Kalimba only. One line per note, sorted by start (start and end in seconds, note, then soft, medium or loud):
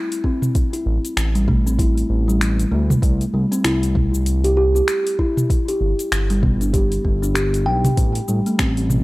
0.24 0.71 C4 loud
0.73 0.81 E4 medium
1.35 1.47 G3 medium
1.48 1.64 A3 loud
1.66 1.78 C4 medium
1.79 2.26 E4 medium
2.28 2.40 G3 medium
2.72 3.03 A3 medium
3.34 3.51 G3 medium
3.52 3.64 C4 medium
3.64 3.82 E4 loud
4.44 4.52 G4 medium
4.57 4.68 G4 loud
4.75 4.87 G4 medium
5.19 5.50 E4 loud
5.68 5.76 G4 medium
6.30 6.42 G3 medium
6.43 6.59 B3 loud
6.61 6.73 D4 medium
6.73 6.90 G4 medium
7.05 7.15 B3 medium
7.22 7.30 D4 medium
7.35 7.52 G4 medium
7.66 7.84 G5 loud
8.28 8.45 G3 medium
8.46 8.59 A3 medium
8.59 8.76 C4 loud